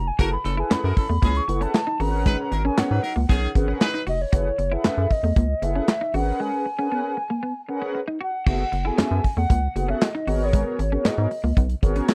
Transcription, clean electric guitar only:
0.19 0.28 F#4 medium
0.44 muted clean electric guitar stroke soft
0.57 0.67 E4 medium
0.70 0.80 C#4 medium
0.96 muted clean electric guitar stroke soft
1.09 1.19 A3 medium
1.22 1.32 A#3 medium
1.48 muted clean electric guitar stroke soft
1.61 1.71 C#4 medium
1.74 muted clean electric guitar stroke soft
1.87 1.96 D#4 medium
2.00 2.09 F#4 medium
2.26 2.35 G#3 medium
2.52 muted clean electric guitar stroke medium
2.65 2.74 C#4 medium
2.78 2.87 B3 medium
3.03 muted clean electric guitar stroke soft
3.16 3.26 A#3 medium
3.29 3.39 B3 medium
3.55 muted clean electric guitar stroke soft
3.68 3.78 C#4 medium
3.81 muted clean electric guitar stroke soft
3.94 4.03 D#4 medium
4.07 4.16 F#4 medium
4.32 4.42 F#4 medium
4.58 muted clean electric guitar stroke soft
4.72 4.81 E4 medium
4.84 4.94 C#4 medium
5.10 muted clean electric guitar stroke soft
5.24 5.33 A3 medium
5.37 5.46 A#3 medium
5.62 muted clean electric guitar stroke soft
5.75 5.85 C#4 medium
5.88 muted clean electric guitar stroke soft
6.01 6.11 D#4 medium
6.14 6.24 F#4 medium
6.40 6.49 G#3 medium
6.66 muted clean electric guitar stroke soft
6.79 6.88 C#4 medium
6.92 7.01 B3 medium
7.17 muted clean electric guitar stroke soft
7.30 7.40 A#3 medium
7.43 7.52 B3 medium
7.69 muted clean electric guitar stroke soft
7.82 7.91 C#4 medium
7.95 muted clean electric guitar stroke soft
8.08 8.17 D#4 medium
8.21 8.30 F#4 medium
8.46 8.56 F#4 medium
8.72 muted clean electric guitar stroke soft
8.85 8.95 E4 medium
8.98 9.07 C#4 medium
9.24 muted clean electric guitar stroke soft
9.37 9.46 A3 medium
9.50 9.59 A#3 medium
9.76 muted clean electric guitar stroke soft
9.88 9.98 C#4 medium
10.02 muted clean electric guitar stroke soft
10.15 10.24 D#4 medium
10.28 10.37 F#4 medium
10.53 10.63 G#3 medium
10.79 muted clean electric guitar stroke soft
10.92 11.02 C#4 medium
11.05 11.14 B3 medium
11.31 muted clean electric guitar stroke soft
11.44 11.53 A#3 medium
11.57 11.66 B3 medium
11.83 muted clean electric guitar stroke soft
11.96 12.05 C#4 medium
12.09 muted clean electric guitar stroke soft

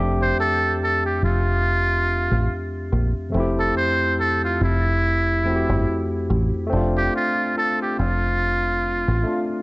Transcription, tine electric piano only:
0.00 3.26 F2 medium
0.00 3.28 A3 medium
0.00 3.29 C4 medium
0.00 0.17 D4 medium
0.00 3.31 G4 medium
0.00 3.30 E5 medium
3.29 5.39 F2 medium
3.29 5.40 A3 medium
3.34 5.41 C4 medium
3.34 5.43 E4 medium
3.40 5.44 G4 medium
5.44 6.71 F2 medium
5.44 6.65 A3 medium
5.44 6.68 C4 medium
5.44 6.73 E4 soft
5.49 5.54 F#4 soft
5.56 6.77 G4 medium
6.67 9.19 A3 medium
6.67 9.20 C4 medium
6.73 9.22 D4 medium
6.73 9.24 F4 medium
9.23 9.62 A3 medium
9.23 9.62 C4 soft
9.23 9.62 D4 soft
9.29 9.62 F4 medium

